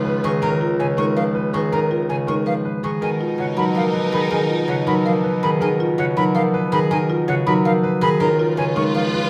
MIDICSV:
0, 0, Header, 1, 7, 480
1, 0, Start_track
1, 0, Tempo, 370370
1, 553, Time_signature, 7, 3, 24, 8
1, 12052, End_track
2, 0, Start_track
2, 0, Title_t, "Flute"
2, 0, Program_c, 0, 73
2, 320, Note_on_c, 0, 85, 96
2, 409, Note_off_c, 0, 85, 0
2, 551, Note_on_c, 0, 82, 99
2, 641, Note_off_c, 0, 82, 0
2, 1031, Note_on_c, 0, 80, 90
2, 1121, Note_off_c, 0, 80, 0
2, 1267, Note_on_c, 0, 85, 99
2, 1358, Note_off_c, 0, 85, 0
2, 1508, Note_on_c, 0, 77, 101
2, 1600, Note_off_c, 0, 77, 0
2, 1992, Note_on_c, 0, 85, 87
2, 2082, Note_off_c, 0, 85, 0
2, 2240, Note_on_c, 0, 82, 85
2, 2329, Note_off_c, 0, 82, 0
2, 2709, Note_on_c, 0, 80, 86
2, 2800, Note_off_c, 0, 80, 0
2, 2948, Note_on_c, 0, 85, 84
2, 3039, Note_off_c, 0, 85, 0
2, 3199, Note_on_c, 0, 77, 92
2, 3288, Note_off_c, 0, 77, 0
2, 3679, Note_on_c, 0, 85, 77
2, 3768, Note_off_c, 0, 85, 0
2, 3924, Note_on_c, 0, 80, 87
2, 4012, Note_off_c, 0, 80, 0
2, 4400, Note_on_c, 0, 78, 86
2, 4489, Note_off_c, 0, 78, 0
2, 4635, Note_on_c, 0, 83, 83
2, 4724, Note_off_c, 0, 83, 0
2, 4878, Note_on_c, 0, 77, 102
2, 4967, Note_off_c, 0, 77, 0
2, 5362, Note_on_c, 0, 83, 75
2, 5450, Note_off_c, 0, 83, 0
2, 5602, Note_on_c, 0, 80, 88
2, 5691, Note_off_c, 0, 80, 0
2, 6075, Note_on_c, 0, 78, 90
2, 6165, Note_off_c, 0, 78, 0
2, 6313, Note_on_c, 0, 83, 86
2, 6403, Note_off_c, 0, 83, 0
2, 6547, Note_on_c, 0, 77, 100
2, 6638, Note_off_c, 0, 77, 0
2, 7037, Note_on_c, 0, 83, 91
2, 7126, Note_off_c, 0, 83, 0
2, 7277, Note_on_c, 0, 80, 95
2, 7367, Note_off_c, 0, 80, 0
2, 7752, Note_on_c, 0, 78, 104
2, 7843, Note_off_c, 0, 78, 0
2, 7996, Note_on_c, 0, 83, 93
2, 8085, Note_off_c, 0, 83, 0
2, 8229, Note_on_c, 0, 77, 110
2, 8320, Note_off_c, 0, 77, 0
2, 8711, Note_on_c, 0, 83, 96
2, 8802, Note_off_c, 0, 83, 0
2, 8951, Note_on_c, 0, 80, 101
2, 9042, Note_off_c, 0, 80, 0
2, 9437, Note_on_c, 0, 78, 101
2, 9526, Note_off_c, 0, 78, 0
2, 9672, Note_on_c, 0, 83, 98
2, 9763, Note_off_c, 0, 83, 0
2, 9919, Note_on_c, 0, 77, 113
2, 10008, Note_off_c, 0, 77, 0
2, 10397, Note_on_c, 0, 83, 104
2, 10487, Note_off_c, 0, 83, 0
2, 10641, Note_on_c, 0, 82, 99
2, 10730, Note_off_c, 0, 82, 0
2, 11117, Note_on_c, 0, 80, 100
2, 11207, Note_off_c, 0, 80, 0
2, 11362, Note_on_c, 0, 85, 96
2, 11451, Note_off_c, 0, 85, 0
2, 11600, Note_on_c, 0, 77, 105
2, 11689, Note_off_c, 0, 77, 0
2, 12052, End_track
3, 0, Start_track
3, 0, Title_t, "Grand piano"
3, 0, Program_c, 1, 0
3, 62, Note_on_c, 1, 71, 90
3, 303, Note_on_c, 1, 68, 112
3, 382, Note_off_c, 1, 71, 0
3, 543, Note_on_c, 1, 70, 124
3, 622, Note_off_c, 1, 68, 0
3, 862, Note_off_c, 1, 70, 0
3, 1031, Note_on_c, 1, 73, 86
3, 1260, Note_on_c, 1, 70, 105
3, 1345, Note_off_c, 1, 73, 0
3, 1581, Note_off_c, 1, 70, 0
3, 1746, Note_on_c, 1, 71, 85
3, 1988, Note_on_c, 1, 68, 105
3, 2063, Note_off_c, 1, 71, 0
3, 2235, Note_on_c, 1, 70, 106
3, 2304, Note_off_c, 1, 68, 0
3, 2546, Note_off_c, 1, 70, 0
3, 2711, Note_on_c, 1, 73, 79
3, 2944, Note_on_c, 1, 70, 100
3, 3025, Note_off_c, 1, 73, 0
3, 3263, Note_off_c, 1, 70, 0
3, 3433, Note_on_c, 1, 71, 76
3, 3669, Note_on_c, 1, 68, 99
3, 3746, Note_off_c, 1, 71, 0
3, 3904, Note_on_c, 1, 70, 91
3, 3984, Note_off_c, 1, 68, 0
3, 4223, Note_off_c, 1, 70, 0
3, 4397, Note_on_c, 1, 73, 75
3, 4629, Note_on_c, 1, 70, 90
3, 4707, Note_off_c, 1, 73, 0
3, 4944, Note_off_c, 1, 70, 0
3, 5106, Note_on_c, 1, 71, 80
3, 5348, Note_on_c, 1, 68, 98
3, 5423, Note_off_c, 1, 71, 0
3, 5586, Note_on_c, 1, 70, 101
3, 5664, Note_off_c, 1, 68, 0
3, 5903, Note_off_c, 1, 70, 0
3, 6069, Note_on_c, 1, 73, 75
3, 6308, Note_on_c, 1, 70, 112
3, 6384, Note_off_c, 1, 73, 0
3, 6624, Note_off_c, 1, 70, 0
3, 6788, Note_on_c, 1, 71, 81
3, 7042, Note_on_c, 1, 68, 102
3, 7104, Note_off_c, 1, 71, 0
3, 7265, Note_on_c, 1, 70, 108
3, 7349, Note_off_c, 1, 68, 0
3, 7583, Note_off_c, 1, 70, 0
3, 7757, Note_on_c, 1, 73, 91
3, 7998, Note_on_c, 1, 70, 106
3, 8067, Note_off_c, 1, 73, 0
3, 8307, Note_off_c, 1, 70, 0
3, 8475, Note_on_c, 1, 71, 95
3, 8707, Note_on_c, 1, 68, 123
3, 8786, Note_off_c, 1, 71, 0
3, 8955, Note_on_c, 1, 70, 120
3, 9023, Note_off_c, 1, 68, 0
3, 9266, Note_off_c, 1, 70, 0
3, 9432, Note_on_c, 1, 73, 93
3, 9676, Note_on_c, 1, 70, 105
3, 9745, Note_off_c, 1, 73, 0
3, 9987, Note_off_c, 1, 70, 0
3, 10154, Note_on_c, 1, 71, 95
3, 10392, Note_on_c, 1, 68, 122
3, 10466, Note_off_c, 1, 71, 0
3, 10629, Note_on_c, 1, 70, 127
3, 10705, Note_off_c, 1, 68, 0
3, 10944, Note_off_c, 1, 70, 0
3, 11115, Note_on_c, 1, 73, 91
3, 11349, Note_on_c, 1, 70, 104
3, 11426, Note_off_c, 1, 73, 0
3, 11664, Note_off_c, 1, 70, 0
3, 11843, Note_on_c, 1, 71, 91
3, 12052, Note_off_c, 1, 71, 0
3, 12052, End_track
4, 0, Start_track
4, 0, Title_t, "Marimba"
4, 0, Program_c, 2, 12
4, 0, Note_on_c, 2, 71, 113
4, 144, Note_off_c, 2, 71, 0
4, 321, Note_on_c, 2, 71, 98
4, 556, Note_on_c, 2, 70, 102
4, 628, Note_off_c, 2, 71, 0
4, 794, Note_on_c, 2, 65, 107
4, 867, Note_off_c, 2, 70, 0
4, 1106, Note_off_c, 2, 65, 0
4, 1270, Note_on_c, 2, 63, 89
4, 1512, Note_on_c, 2, 71, 102
4, 1585, Note_off_c, 2, 63, 0
4, 1825, Note_off_c, 2, 71, 0
4, 1994, Note_on_c, 2, 71, 91
4, 2236, Note_on_c, 2, 70, 84
4, 2306, Note_off_c, 2, 71, 0
4, 2476, Note_on_c, 2, 65, 98
4, 2547, Note_off_c, 2, 70, 0
4, 2787, Note_off_c, 2, 65, 0
4, 2957, Note_on_c, 2, 63, 88
4, 3200, Note_on_c, 2, 71, 102
4, 3267, Note_off_c, 2, 63, 0
4, 3508, Note_off_c, 2, 71, 0
4, 3677, Note_on_c, 2, 71, 74
4, 3914, Note_on_c, 2, 68, 75
4, 3987, Note_off_c, 2, 71, 0
4, 4156, Note_on_c, 2, 65, 89
4, 4226, Note_off_c, 2, 68, 0
4, 4467, Note_off_c, 2, 65, 0
4, 4627, Note_on_c, 2, 63, 78
4, 4874, Note_on_c, 2, 70, 93
4, 4944, Note_off_c, 2, 63, 0
4, 5186, Note_off_c, 2, 70, 0
4, 5353, Note_on_c, 2, 70, 75
4, 5590, Note_on_c, 2, 68, 82
4, 5666, Note_off_c, 2, 70, 0
4, 5830, Note_on_c, 2, 65, 99
4, 5905, Note_off_c, 2, 68, 0
4, 6145, Note_off_c, 2, 65, 0
4, 6311, Note_on_c, 2, 63, 97
4, 6554, Note_on_c, 2, 70, 100
4, 6625, Note_off_c, 2, 63, 0
4, 6866, Note_off_c, 2, 70, 0
4, 7037, Note_on_c, 2, 70, 87
4, 7275, Note_on_c, 2, 68, 89
4, 7347, Note_off_c, 2, 70, 0
4, 7519, Note_on_c, 2, 65, 117
4, 7586, Note_off_c, 2, 68, 0
4, 7828, Note_off_c, 2, 65, 0
4, 7995, Note_on_c, 2, 63, 100
4, 8239, Note_on_c, 2, 70, 111
4, 8306, Note_off_c, 2, 63, 0
4, 8548, Note_off_c, 2, 70, 0
4, 8712, Note_on_c, 2, 70, 95
4, 8957, Note_on_c, 2, 68, 92
4, 9025, Note_off_c, 2, 70, 0
4, 9197, Note_on_c, 2, 65, 114
4, 9267, Note_off_c, 2, 68, 0
4, 9507, Note_off_c, 2, 65, 0
4, 9678, Note_on_c, 2, 63, 102
4, 9920, Note_on_c, 2, 70, 106
4, 9987, Note_off_c, 2, 63, 0
4, 10228, Note_off_c, 2, 70, 0
4, 10395, Note_on_c, 2, 70, 106
4, 10620, Note_off_c, 2, 70, 0
4, 10635, Note_on_c, 2, 70, 93
4, 10879, Note_on_c, 2, 65, 104
4, 10946, Note_off_c, 2, 70, 0
4, 11188, Note_off_c, 2, 65, 0
4, 11355, Note_on_c, 2, 63, 102
4, 11598, Note_on_c, 2, 71, 122
4, 11666, Note_off_c, 2, 63, 0
4, 11907, Note_off_c, 2, 71, 0
4, 12052, End_track
5, 0, Start_track
5, 0, Title_t, "String section"
5, 0, Program_c, 3, 48
5, 0, Note_on_c, 3, 65, 90
5, 0, Note_on_c, 3, 71, 92
5, 259, Note_off_c, 3, 71, 0
5, 261, Note_off_c, 3, 65, 0
5, 3920, Note_on_c, 3, 63, 89
5, 3921, Note_on_c, 3, 70, 85
5, 6985, Note_off_c, 3, 63, 0
5, 6986, Note_off_c, 3, 70, 0
5, 10641, Note_on_c, 3, 65, 104
5, 10645, Note_on_c, 3, 71, 89
5, 12052, Note_off_c, 3, 65, 0
5, 12052, Note_off_c, 3, 71, 0
5, 12052, End_track
6, 0, Start_track
6, 0, Title_t, "Harp"
6, 0, Program_c, 4, 46
6, 0, Note_on_c, 4, 49, 96
6, 0, Note_on_c, 4, 51, 107
6, 0, Note_on_c, 4, 53, 87
6, 0, Note_on_c, 4, 56, 111
6, 295, Note_off_c, 4, 51, 0
6, 310, Note_on_c, 4, 51, 112
6, 533, Note_off_c, 4, 51, 0
6, 548, Note_on_c, 4, 51, 117
6, 1018, Note_off_c, 4, 49, 0
6, 1033, Note_on_c, 4, 49, 86
6, 1253, Note_off_c, 4, 56, 0
6, 1268, Note_on_c, 4, 56, 110
6, 1494, Note_off_c, 4, 53, 0
6, 1510, Note_on_c, 4, 53, 85
6, 1980, Note_off_c, 4, 51, 0
6, 1995, Note_on_c, 4, 51, 101
6, 2220, Note_off_c, 4, 51, 0
6, 2235, Note_on_c, 4, 51, 100
6, 2701, Note_off_c, 4, 49, 0
6, 2716, Note_on_c, 4, 49, 78
6, 2942, Note_off_c, 4, 56, 0
6, 2957, Note_on_c, 4, 56, 100
6, 3171, Note_off_c, 4, 53, 0
6, 3187, Note_on_c, 4, 53, 75
6, 3661, Note_off_c, 4, 51, 0
6, 3676, Note_on_c, 4, 51, 91
6, 3898, Note_off_c, 4, 51, 0
6, 3914, Note_on_c, 4, 51, 96
6, 3929, Note_off_c, 4, 53, 0
6, 3934, Note_off_c, 4, 49, 0
6, 4379, Note_on_c, 4, 49, 72
6, 4621, Note_on_c, 4, 54, 96
6, 4857, Note_on_c, 4, 53, 80
6, 5326, Note_off_c, 4, 51, 0
6, 5341, Note_on_c, 4, 51, 98
6, 5562, Note_off_c, 4, 51, 0
6, 5578, Note_on_c, 4, 51, 100
6, 6045, Note_off_c, 4, 49, 0
6, 6061, Note_on_c, 4, 49, 88
6, 6295, Note_off_c, 4, 54, 0
6, 6310, Note_on_c, 4, 54, 100
6, 6544, Note_off_c, 4, 53, 0
6, 6560, Note_on_c, 4, 53, 78
6, 7019, Note_off_c, 4, 51, 0
6, 7034, Note_on_c, 4, 51, 116
6, 7263, Note_off_c, 4, 51, 0
6, 7278, Note_on_c, 4, 51, 109
6, 7735, Note_off_c, 4, 49, 0
6, 7750, Note_on_c, 4, 49, 99
6, 7975, Note_off_c, 4, 54, 0
6, 7991, Note_on_c, 4, 54, 101
6, 8012, Note_off_c, 4, 56, 0
6, 8208, Note_off_c, 4, 53, 0
6, 8223, Note_on_c, 4, 53, 95
6, 8693, Note_off_c, 4, 51, 0
6, 8709, Note_on_c, 4, 51, 116
6, 8938, Note_off_c, 4, 51, 0
6, 8953, Note_on_c, 4, 51, 115
6, 9418, Note_off_c, 4, 49, 0
6, 9433, Note_on_c, 4, 49, 107
6, 9659, Note_off_c, 4, 54, 0
6, 9675, Note_on_c, 4, 54, 113
6, 9900, Note_off_c, 4, 53, 0
6, 9916, Note_on_c, 4, 53, 94
6, 10369, Note_off_c, 4, 51, 0
6, 10385, Note_on_c, 4, 51, 122
6, 10614, Note_off_c, 4, 51, 0
6, 10629, Note_on_c, 4, 51, 114
6, 10653, Note_off_c, 4, 49, 0
6, 10654, Note_off_c, 4, 54, 0
6, 11109, Note_on_c, 4, 49, 98
6, 11352, Note_on_c, 4, 56, 105
6, 11576, Note_off_c, 4, 53, 0
6, 11592, Note_on_c, 4, 53, 90
6, 12052, Note_off_c, 4, 49, 0
6, 12052, Note_off_c, 4, 51, 0
6, 12052, Note_off_c, 4, 53, 0
6, 12052, Note_off_c, 4, 56, 0
6, 12052, End_track
7, 0, Start_track
7, 0, Title_t, "Bassoon"
7, 0, Program_c, 5, 70
7, 0, Note_on_c, 5, 37, 87
7, 3768, Note_off_c, 5, 37, 0
7, 3914, Note_on_c, 5, 47, 76
7, 10486, Note_off_c, 5, 47, 0
7, 10644, Note_on_c, 5, 37, 89
7, 12052, Note_off_c, 5, 37, 0
7, 12052, End_track
0, 0, End_of_file